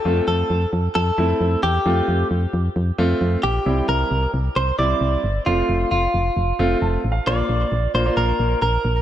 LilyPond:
<<
  \new Staff \with { instrumentName = "Clean electric guitar" } { \time 4/4 \key f \major \tempo 4 = 133 a'8 a'4 r8 a'4. g'8~ | g'4 r2 r8 g'8~ | g'8 bes'4 r8 c''8 d''4. | f'4 f'2 r4 |
\key bes \major d''4. c''8 bes'4 bes'4 | }
  \new Staff \with { instrumentName = "Grand piano" } { \time 4/4 \key f \major << { r1 | r1 | r1 | r2. \tuplet 3/2 { a''4 f''8 } |
\key bes \major r1 | } \\ { <a c' f'>4~ <a c' f'>16 r4 r16 <a c' e'>4 r8 | <a c' f'>4~ <a c' f'>16 r4 r16 <a c' f'>4 r8 | <g c' e'>4~ <g c' e'>16 r4 r16 <g c' e'>4 r8 | <a c' f'>4~ <a c' f'>16 r4 r16 <a c' f'>4 r8 |
<bes d' f'>4 r8 <bes d' f'>16 <bes d' f'>4~ <bes d' f'>16 r4 | } >> }
  \new Staff \with { instrumentName = "FM bass" } { \clef bass \time 4/4 \key f \major f,8 f,8 f,8 f,8 f,8 f,8 f,8 e,8 | f,8 f,8 f,8 f,8 f,8 f,8 f,8 bes,,8 | c,8 c,8 c,8 c,8 c,8 c,8 c,8 g,,8 | f,,8 f,,8 f,,8 f,,8 f,,8 f,,8 f,,8 a,,8 |
\key bes \major bes,,8 bes,,8 bes,,8 bes,,8 bes,,8 bes,,8 bes,,8 bes,,8 | }
>>